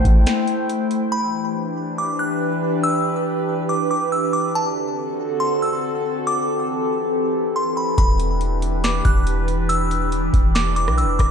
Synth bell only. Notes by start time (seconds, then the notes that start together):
1.12 B5
1.98 D6
2.19 F#6
2.83 E6
3.69 D6
3.91 D6
4.12 E6
4.33 D6
4.55 A5
5.40 C6
5.62 E6
6.27 D6
7.56 C6
7.77 B5
7.98 B5
8.84 D6
9.05 F#6
9.69 E6
10.55 D6
10.76 D6
10.98 E6
11.19 D6